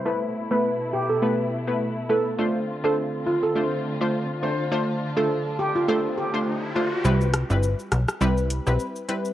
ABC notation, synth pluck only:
X:1
M:4/4
L:1/16
Q:"Swing 16ths" 1/4=103
K:C
V:1 name="Synth pluck"
[A,B,EB] z2 [A,B,EB] z4 [A,B,EB]3 [A,B,EB] z2 [A,B,EB] z | [A,DFc] z2 [A,DFc] z4 [A,DFc]3 [A,DFc] z2 [A,DFc] z | [A,DFc] z2 [A,DFc] z4 [A,DFc]3 [A,DFc] z2 [A,DFc] z | [G,CEB] z2 [G,CEB] z4 [G,CEB]3 [G,CEB] z2 [G,CEB] z |]